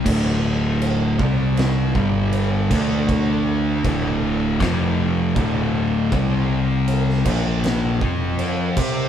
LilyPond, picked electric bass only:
\new Staff \with { instrumentName = "Picked electric bass" } { \clef bass \time 4/4 \key d \minor \tempo 4 = 79 d,,4. c,4 g,,4 d,8~ | d,4 d,,4 f,,4 d,,4 | c,4. bes,,4 f,4 c8 | }